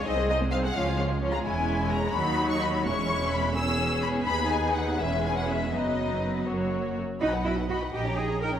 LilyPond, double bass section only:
\new Staff \with { instrumentName = "Double bass section" } { \clef bass \time 6/8 \key cis \mixolydian \tempo 4. = 85 bis,,4. cis,4. | \key b \major e,,4. dis,4. | e,,2. | dis,4. e,,4. |
fis,,4. fis,,4 r8 | b,,4. ais,,4. | }